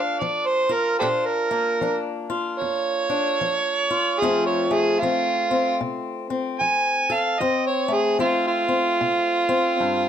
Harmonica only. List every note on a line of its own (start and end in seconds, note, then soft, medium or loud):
0.00 0.21 F5 medium
0.19 0.48 D5 medium
0.46 0.74 C5 medium
0.72 0.98 A#4 loud
0.99 1.08 G4 medium
0.99 1.06 A4 medium
0.99 1.27 C5 medium
1.26 2.03 A#4 medium
2.59 4.21 C#5 loud
4.19 4.45 G#4 loud
4.46 4.74 C#5 medium
4.73 5.00 G#4 medium
4.99 5.77 F4 loud
6.59 7.15 G#5 loud
7.13 7.41 F5 medium
7.39 7.65 D#5 loud
7.66 7.95 C#5 medium
7.93 8.19 G#4 medium
8.20 8.45 F4 medium
8.47 10.09 F4 loud